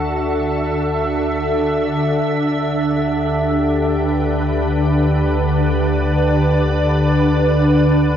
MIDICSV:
0, 0, Header, 1, 3, 480
1, 0, Start_track
1, 0, Tempo, 500000
1, 7842, End_track
2, 0, Start_track
2, 0, Title_t, "Ambient pad"
2, 0, Program_c, 0, 92
2, 0, Note_on_c, 0, 50, 82
2, 0, Note_on_c, 0, 62, 86
2, 0, Note_on_c, 0, 66, 70
2, 0, Note_on_c, 0, 69, 84
2, 0, Note_on_c, 0, 76, 72
2, 2169, Note_off_c, 0, 66, 0
2, 2577, Note_on_c, 0, 67, 64
2, 3691, Note_off_c, 0, 76, 0
2, 3771, Note_on_c, 0, 71, 77
2, 4693, Note_off_c, 0, 69, 0
2, 4991, Note_on_c, 0, 74, 65
2, 7842, Note_off_c, 0, 50, 0
2, 7842, Note_off_c, 0, 62, 0
2, 7842, Note_off_c, 0, 67, 0
2, 7842, Note_off_c, 0, 71, 0
2, 7842, Note_off_c, 0, 74, 0
2, 7842, End_track
3, 0, Start_track
3, 0, Title_t, "Sub bass"
3, 0, Program_c, 1, 38
3, 0, Note_on_c, 1, 38, 85
3, 2126, Note_off_c, 1, 38, 0
3, 2163, Note_on_c, 1, 38, 77
3, 7842, Note_off_c, 1, 38, 0
3, 7842, End_track
0, 0, End_of_file